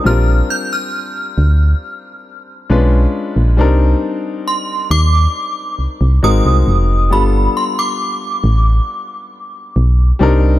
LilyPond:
<<
  \new Staff \with { instrumentName = "Synth bell" } { \time 4/4 \key g \minor \tempo 4 = 68 f'''8 g'''16 f'''2~ f'''8. r8 | r4 c'''8 d'''4 r8 ees'''4 | b''8 c'''16 d'''2~ d'''8. r8 | }
  \new Staff \with { instrumentName = "Grand piano" } { \time 4/4 \key g \minor <g c' d' f' bes'>2. <gis des' d' f' b'>4 | <g c' d' ees' bes'>2. <aes c' ees' ges' bes'>4 | <g b d' f' a'>2.~ <g b d' f' a'>8 <g c' d' ees' bes'>8 | }
  \new Staff \with { instrumentName = "FM bass" } { \clef bass \time 4/4 \key g \minor bes,,8 r4 d,8 r4 b,,8 r16 bes,,16 | c,8 r4 ees,8 r8 c,16 c,16 aes,,16 c,16 f,,8 | g,,8 r4 a,,8 r4 b,,8 c,8 | }
>>